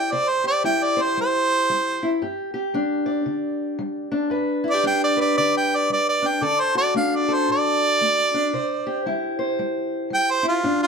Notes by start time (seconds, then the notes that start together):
Already playing: G4 G5
0.11 C3 C5 D5
0.29 C5
0.44 G4 D5
0.64 G3 E4 G5
0.84 D5
0.97 C5
1.02 C5
1.17 G3 C5
1.70 G3
2.03 E4
2.22 G2 G4
2.54 G4
2.74 G3 D4
3.06 D5
3.26 D3
3.79 G3
4.12 D4
4.30 G2 B4
4.64 E4
4.70 G4 D5
4.84 G3 D4 G5
5.04 D5
5.17 B4 D5
5.37 D3 D5
5.57 G5
5.75 D5
5.90 G3 D5
6.09 D5
6.22 D4
6.27 G5
6.41 D3 A4 D5
6.60 C5
6.75 F#4 D5
6.94 A3 D4 F5
7.15 D5
7.29 A4
7.34 C5
7.48 A2 D5
8.01 A3
8.34 D4
8.53 C3 C5
8.87 G4
9.06 G3 E4
9.39 C5
9.59 G3
10.10 G3 G5
10.31 C5
10.43 E4
10.48 F4
10.64 G2 D4
10.83 F4